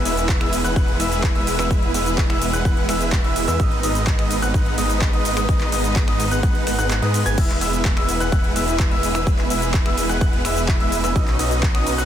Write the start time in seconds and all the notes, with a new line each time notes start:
Already playing: E3 E4 G#4 B4
0.05 E1 G#3 B3 E4 B4 E5 E6, open hi-hat, ride, shaker
0.17 closed hi-hat, shaker
0.29 kick, clap, closed hi-hat, shaker
0.41 E1 G#3 B3 E4 B4 E5 E6, finger snap, closed hi-hat
0.53 open hi-hat, ride, shaker
0.64 E1 G#3 B3 E4 B4 F#5 F#6, closed hi-hat, shaker
0.76 E1 G#3 B3 E4 B4 F#5 F#6, kick, closed hi-hat, shaker
0.88 closed hi-hat
1.00 E1 G#3 B3 E4 B4 E5 E6, open hi-hat, ride, shaker
1.12 closed hi-hat, shaker
1.23 kick, clap, closed hi-hat, shaker
1.35 E1 G#3 B3 E4 B4 E5 E6, closed hi-hat
1.47 open hi-hat, ride, shaker
1.59 E1 G#3 B3 E4 B4 E5 E6, finger snap, closed hi-hat, shaker
1.71 E1 G#3 B3 E4 B4 E5 E6, kick, closed hi-hat, shaker
1.83 closed hi-hat
1.94 E1 G#3 B3 E4 B4 E5 E6, open hi-hat, ride, shaker
2.06 closed hi-hat, shaker
2.18 kick, clap, closed hi-hat, shaker
2.30 E1 G#3 B3 E4 B4 E5 E6, finger snap, closed hi-hat
2.42 open hi-hat, ride, shaker
2.53 E1 G#3 B3 E4 B4 F#5 F#6, closed hi-hat, shaker
2.65 E1 G#3 B3 E4 B4 F#5 F#6, kick, closed hi-hat, shaker
2.77 closed hi-hat
2.89 E1 G#3 B3 E4 B4 E5 E6, finger snap, open hi-hat, ride, shaker
3.01 closed hi-hat, shaker
3.12 kick, clap, closed hi-hat, shaker
3.24 E1 G#3 B3 E4 B4 E5 E6, closed hi-hat
3.36 open hi-hat, ride, shaker
3.48 E2 G#3 B3 E4 B4 E5 E6, closed hi-hat, shaker
3.60 G#1 G#3 B3 D#4 B4 D#5 D#6, kick, closed hi-hat, shaker
3.71 closed hi-hat
3.83 G#1 G#3 B3 D#4 B4 D#5 D#6, open hi-hat, ride, shaker
3.95 closed hi-hat, shaker
4.07 kick, clap, closed hi-hat, shaker
4.19 G#1 G#3 B3 D#4 B4 D#5 D#6, finger snap, closed hi-hat
4.31 open hi-hat, ride, shaker
4.42 G#1 G#3 B3 D#4 B4 F#5 F#6, closed hi-hat, shaker
4.54 G#1 G#3 B3 D#4 B4 F#5 F#6, kick, closed hi-hat, shaker
4.66 closed hi-hat
4.78 G#1 G#3 B3 D#4 B4 D#5 D#6, open hi-hat, ride, shaker
4.90 closed hi-hat, shaker
5.01 kick, clap, closed hi-hat, shaker
5.13 G#1 G#3 B3 D#4 B4 D#5 D#6, closed hi-hat
5.25 open hi-hat, ride, shaker
5.37 G#1 G#3 B3 D#4 B4 D#5 D#6, finger snap, closed hi-hat, shaker
5.49 G#1 G#3 B3 D#4 B4 D#5, kick, closed hi-hat, shaker
5.61 clap, closed hi-hat
5.72 G#1 G#3 B3 D#4 B4 D#5 D#6, open hi-hat, ride, shaker
5.84 closed hi-hat, shaker
5.96 kick, clap, closed hi-hat, shaker
6.08 G#1 G#3 B3 D#4 B4 D#5 D#6, finger snap, closed hi-hat
6.20 open hi-hat, ride, shaker
6.31 G#1 G#3 B3 D#4 B4 F#5 F#6, closed hi-hat, shaker
6.43 G#1 G#3 B3 D#4 B4 F#5 F#6, kick, closed hi-hat, shaker
6.55 closed hi-hat
6.67 G#1 G#3 B3 D#4 B4 F#5 F#6, finger snap, open hi-hat, ride, shaker
6.79 G#1 G#3 B3 D#4 B4 F#5 F#6, closed hi-hat, shaker
6.91 clap, closed hi-hat, shaker
7.02 G#2 G#3 B3 D#4 B4 D#5 D#6, closed hi-hat
7.14 open hi-hat, ride, shaker
7.26 G#1 G#3 B3 D#4 B4 G#5 G#6, closed hi-hat, shaker
7.38 E1 E3 G#3 B3 E4 G#4 B4 E5 E6, kick, closed hi-hat, crash, shaker
7.50 clap, closed hi-hat
7.61 E1 G#3 B3 E4 B4 E5 E6, open hi-hat, ride, shaker
7.73 closed hi-hat, shaker
7.85 kick, clap, closed hi-hat, shaker
7.97 E1 G#3 B3 E4 B4 E5 E6, finger snap, closed hi-hat
8.09 open hi-hat, ride, shaker
8.20 E1 G#3 B3 E4 B4 F#5 F#6, closed hi-hat, shaker
8.32 E1 G#3 B3 E4 B4 F#5 F#6, kick, closed hi-hat, shaker
8.44 closed hi-hat
8.56 E1 G#3 B3 E4 B4 E5 E6, open hi-hat, ride, shaker
8.68 closed hi-hat, shaker
8.80 kick, clap, closed hi-hat, shaker
8.91 E1 G#3 B3 E4 B4 E5 E6, closed hi-hat
9.03 open hi-hat, ride, shaker
9.15 E1 G#3 B3 E4 B4 E5 E6, finger snap, closed hi-hat, shaker
9.27 E1 G#3 B3 E4 B4 E5, kick, closed hi-hat, shaker
9.39 clap, closed hi-hat
9.50 E1 G#3 B3 E4 B4 E5 E6, open hi-hat, ride, shaker
9.62 closed hi-hat, shaker
9.74 kick, clap, closed hi-hat, shaker
9.86 E1 G#3 B3 E4 B4 E5 E6, finger snap, closed hi-hat
9.98 open hi-hat, ride, shaker
10.09 E1 G#3 B3 E4 B4 F#5 F#6, closed hi-hat, shaker
10.21 E1 G#3 B3 E4 B4 F#5 F#6, kick, closed hi-hat, shaker
10.33 closed hi-hat
10.45 E1 G#3 B3 E4 B4 E5 E6, finger snap, open hi-hat, ride, shaker
10.57 closed hi-hat, shaker
10.68 kick, clap, closed hi-hat, shaker
10.80 E1 G#3 B3 E4 B4 E5 E6, closed hi-hat
10.92 open hi-hat, ride, shaker
11.04 E1 G#3 B3 E4 B4 E5 E6, closed hi-hat, shaker
11.15 B1 B3 C#4 D#4 F#4 B4 D#5 D#6, kick, closed hi-hat, shaker
11.28 clap, closed hi-hat
11.39 B1 C#4 D#4 F#4 B4 D#5 D#6, open hi-hat, ride, shaker
11.51 closed hi-hat, shaker
11.63 kick, clap, closed hi-hat, shaker
11.74 B1 C#4 D#4 F#4 B4 D#5 D#6, finger snap, closed hi-hat
11.87 open hi-hat, ride, shaker
11.98 B1 C#4 D#4 F#4 B4 F#5 F#6, closed hi-hat, shaker